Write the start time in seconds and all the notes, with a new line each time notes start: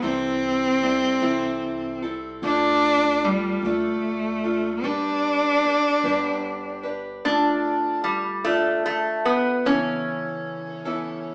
0.02 C2 C3 E3 G3 C4 E4 A4
0.82 G3 C4 E4 A4
1.22 C2 C3 E3 G3 C4 E4 A4
2.02 G3 C4 E4 A4
2.42 D2 D3 A3 D4 F4 A4
3.24 G3 A3 D4 F4 A4
3.62 D2 D3 A3 D4 F4 A4
4.44 D4 F4 A4
4.83 G1 G3 D4 G4 B4
5.63 G3 D4 G4 B4
6.04 G1 G3 D4 G4 B4
6.83 D4 G4 B4
7.25 D3 A3 D4 F4 A4
8.04 G3
8.44 D3 A3 D4 F4 A4
8.86 A3
9.25 B3
9.65 C#3 E3 B3 C#4 E4 A4
10.85 C#3 E3 B3 C#4 E4 A4